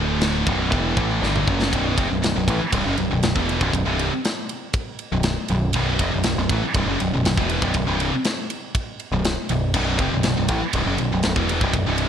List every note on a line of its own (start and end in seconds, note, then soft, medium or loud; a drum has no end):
0.00 0.43 D1 loud
0.00 0.46 D2 medium
0.00 0.46 A2 loud
0.00 0.46 D3 loud
0.21 snare loud
0.21 china medium
0.47 0.70 B0 medium
0.47 0.71 B1 medium
0.47 0.72 F#2 medium
0.47 0.72 B2 loud
0.47 kick loud
0.72 0.95 E1 loud
0.72 0.96 E2 medium
0.72 0.97 B2 loud
0.72 0.97 E3 loud
0.72 kick loud
0.72 china medium
0.97 1.20 A1 medium
0.97 1.21 A2 medium
0.97 1.22 E3 loud
0.97 1.23 A3 loud
0.97 kick loud
1.22 1.45 G1 loud
1.22 1.46 G2 medium
1.22 1.47 D3 medium
1.22 1.47 G3 medium
1.22 snare medium
1.36 mid tom medium
1.47 1.71 F#1 loud
1.47 1.72 F#2 medium
1.47 1.73 C#3 medium
1.47 1.73 F#3 loud
1.47 kick loud
1.62 snare medium
1.73 1.96 B0 loud
1.73 1.97 B1 loud
1.73 1.98 F#2 loud
1.73 1.98 B2 loud
1.73 kick loud
1.73 ride loud
1.98 2.09 F1 loud
1.98 2.10 F2 medium
1.98 2.10 C3 medium
1.98 kick loud
1.98 ride medium
2.10 2.22 B0 medium
2.10 2.21 B1 medium
2.10 2.21 F#2 medium
2.22 2.35 B0 medium
2.22 2.35 B1 medium
2.22 2.35 F#2 medium
2.22 snare loud
2.22 ride loud
2.35 2.47 B0 medium
2.35 2.48 B1 medium
2.35 2.48 F#2 medium
2.48 2.60 A1 loud
2.48 2.60 A2 loud
2.48 2.61 E3 loud
2.48 kick loud
2.48 ride medium
2.61 muted distorted electric guitar stroke medium
2.61 muted picked electric bass stroke soft
2.73 2.85 C1 loud
2.73 2.85 C2 medium
2.73 2.85 G2 loud
2.73 kick loud
2.73 ride loud
2.85 2.97 F#1 loud
2.85 2.97 F#2 loud
2.85 2.98 C#3 loud
2.98 3.10 B0 medium
2.98 3.10 B1 medium
2.98 3.10 F#2 medium
2.98 ride medium
3.11 3.22 B0 medium
3.11 3.23 B1 medium
3.11 3.23 F#2 medium
3.23 3.35 B0 medium
3.23 3.35 B1 medium
3.23 3.36 F#2 medium
3.23 snare loud
3.23 ride loud
3.35 3.59 E1 medium
3.35 3.60 E2 medium
3.35 3.61 B2 medium
3.35 3.61 E3 loud
3.35 kick loud
3.49 ride medium
3.60 3.73 B0 loud
3.60 3.72 B1 loud
3.60 3.72 F#2 loud
3.60 kick loud
3.73 3.85 B0 medium
3.73 3.85 B1 medium
3.73 3.86 F#2 medium
3.73 kick medium
3.73 ride loud
3.85 4.09 C1 loud
3.85 4.10 C2 loud
3.85 4.11 G2 loud
3.85 4.11 C3 loud
3.99 ride medium
4.25 snare loud
4.25 ride loud
4.49 ride medium
4.73 kick loud
4.73 ride loud
4.99 ride medium
5.12 5.35 B0 medium
5.12 5.32 B1 medium
5.12 5.32 F#2 medium
5.23 snare loud
5.23 ride loud
5.48 5.73 B0 medium
5.48 5.70 B1 medium
5.48 5.70 F#2 medium
5.48 ride medium
5.73 5.98 B0 loud
5.73 5.99 B1 medium
5.73 6.00 F#2 loud
5.73 6.00 B2 loud
5.73 kick loud
5.73 ride loud
5.99 6.11 F1 loud
5.99 6.12 F2 medium
5.99 6.12 C3 medium
5.99 kick loud
5.99 ride medium
6.13 6.24 B0 medium
6.13 6.25 B1 medium
6.13 6.25 F#2 medium
6.23 6.36 B0 medium
6.23 6.38 B1 medium
6.23 6.38 F#2 medium
6.23 snare loud
6.23 ride loud
6.36 6.48 B0 medium
6.36 6.51 B1 medium
6.36 6.51 F#2 medium
6.49 6.61 A1 medium
6.49 6.62 A2 loud
6.49 6.63 E3 loud
6.49 kick loud
6.49 ride medium
6.62 muted picked electric bass stroke soft
6.62 muted distorted electric guitar stroke medium
6.74 6.86 C1 loud
6.74 6.88 C2 loud
6.74 6.88 G2 loud
6.74 kick loud
6.74 ride loud
6.86 6.99 F#1 loud
6.86 7.00 F#2 loud
6.86 7.00 C#3 loud
6.99 7.11 B0 medium
6.99 7.13 B1 medium
6.99 7.13 F#2 medium
6.99 ride medium
7.13 7.24 B0 medium
7.13 7.24 B1 medium
7.13 7.25 F#2 medium
7.24 7.36 B0 medium
7.24 7.37 B1 medium
7.24 7.38 F#2 medium
7.24 snare loud
7.24 ride loud
7.37 7.61 E1 medium
7.37 7.62 E2 medium
7.37 7.63 B2 medium
7.37 7.63 E3 medium
7.37 kick loud
7.49 ride medium
7.62 7.74 B0 loud
7.62 7.74 B1 loud
7.62 7.74 F#2 loud
7.62 kick loud
7.74 7.87 B0 medium
7.74 7.87 B1 medium
7.74 7.87 F#2 medium
7.74 kick medium
7.74 ride loud
7.87 8.11 C1 loud
7.87 8.12 C2 loud
7.87 8.12 G2 loud
7.87 8.12 C3 loud
8.00 ride medium
8.24 snare loud
8.24 ride loud
8.50 ride medium
8.75 kick loud
8.75 ride loud
9.00 ride medium
9.12 9.35 B0 medium
9.12 9.32 B1 medium
9.12 9.33 F#2 medium
9.24 snare loud
9.24 ride loud
9.49 9.73 B0 medium
9.49 9.70 B1 medium
9.49 9.71 F#2 medium
9.49 ride medium
9.74 9.98 B0 loud
9.74 9.99 B1 loud
9.74 9.99 F#2 medium
9.74 9.99 B2 loud
9.74 kick loud
9.74 crash medium
9.99 10.11 F1 loud
9.99 10.12 F2 medium
9.99 10.12 C3 medium
9.99 kick loud
9.99 ride medium
10.11 10.23 B0 medium
10.11 10.24 B1 medium
10.11 10.24 F#2 medium
10.23 10.37 B0 medium
10.23 10.36 B1 medium
10.23 10.36 F#2 medium
10.23 snare loud
10.23 ride loud
10.37 10.49 B0 medium
10.37 10.49 B1 medium
10.37 10.49 F#2 medium
10.48 10.61 A1 loud
10.48 10.61 A2 loud
10.48 10.62 E3 loud
10.48 kick loud
10.48 ride loud
10.61 muted picked electric bass stroke soft
10.61 muted distorted electric guitar stroke medium
10.73 10.86 C1 loud
10.73 10.86 C2 loud
10.73 10.86 G2 loud
10.73 kick loud
10.73 ride loud
10.86 10.98 F#1 loud
10.86 10.97 F#2 loud
10.86 10.98 C#3 loud
10.98 11.11 B0 medium
10.98 11.11 B1 medium
10.98 11.12 F#2 medium
10.98 ride medium
11.12 11.23 B0 loud
11.12 11.24 B1 medium
11.12 11.23 F#2 medium
11.23 11.35 B0 medium
11.23 11.35 B1 medium
11.23 11.36 F#2 medium
11.23 snare loud
11.23 ride loud
11.36 11.60 E1 medium
11.36 11.61 E2 medium
11.36 11.61 B2 loud
11.36 11.61 E3 loud
11.36 kick loud
11.49 ride medium
11.61 11.73 B0 loud
11.61 11.73 B1 medium
11.61 11.74 F#2 loud
11.61 kick loud
11.73 11.86 B0 medium
11.73 11.86 B1 medium
11.73 11.87 F#2 medium
11.73 kick loud
11.73 ride loud
11.86 12.09 C1 loud
11.86 12.09 C2 loud
11.86 12.09 G2 loud
11.86 12.09 C3 loud
11.98 ride medium